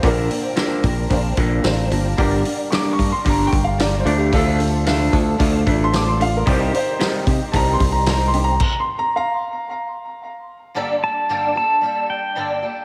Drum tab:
CC |--------|--------|--------|--------|
HH |oooooooo|oooooooo|oooooooo|oooooooo|
SD |--o---o-|--o---o-|--o---o-|--o---o-|
BD |o--ooo--|o--ooo--|o--ooo--|o--ooo--|

CC |x-------|--------|
HH |--------|--------|
SD |--------|--------|
BD |o-------|--------|